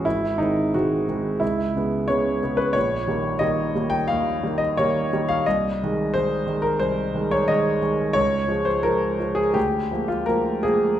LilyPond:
<<
  \new Staff \with { instrumentName = "Grand piano" } { \time 4/4 \key cis \minor \tempo 4 = 88 e'8 dis'8 fis'4 e'4 cis''8. b'16 | \key aes \major des''4 ees''8. g''16 f''8. ees''16 des''8. f''16 | ees''4 c''8. bes'16 c''8. des''16 ees''8 r8 | des''8. c''16 bes'8. aes'16 g'8. f'16 bes'8 aes'8 | }
  \new Staff \with { instrumentName = "Grand piano" } { \clef bass \time 4/4 \key cis \minor gis,,8 <dis gis bis>8 <dis gis bis>8 <dis gis bis>8 cis,8 <cis gis b>8 <cis gis b>8 <cis gis b>8 | \key aes \major bes,,8 <ees g bes>8 <ees g bes>8 <ees g bes>8 ees,8 <ees g bes>8 <ees g bes>8 <ees g bes>8 | c,8 <ees aes>8 <ees aes>8 <ees aes>8 c,8 <ees aes>8 <ees aes>8 <ees aes>8 | des,8 <f aes>8 <f aes>8 <f aes>8 d,8 <f aes bes>8 <f aes bes>8 <f aes bes>8 | }
>>